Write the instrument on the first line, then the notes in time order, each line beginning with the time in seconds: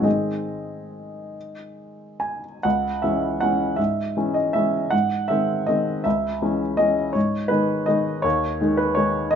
grand piano
0.00 G#2 D#3 G#3 C4 D#5
0.05 G#4
2.20 G#5
2.63 C#2 F#5
3.02 E3 G#3 C#4 E5
3.40 E3 G#3 C#4 F#5
3.76 G#2 E5
4.17 E3 G#3 C#4
4.34 D#5
4.53 E3 G#3 C#4 E5
4.91 G#2 F#5
5.28 D#3 G#3 C4 E5
5.67 D#3 G#3 C4 D#5
6.04 C#2 E5
6.42 E3 G#3 C#4
6.77 E3 G#3 C#4 D#5
7.13 G#2 C#5
7.48 D#3 G#3 D#4 B4
7.86 D#3 G#3 D#4 D#5
8.22 D#2 C#5
8.61 D#3 G#3 D#4
8.77 B4
8.95 D#3 G#3 D#4 C#5
9.31 D#5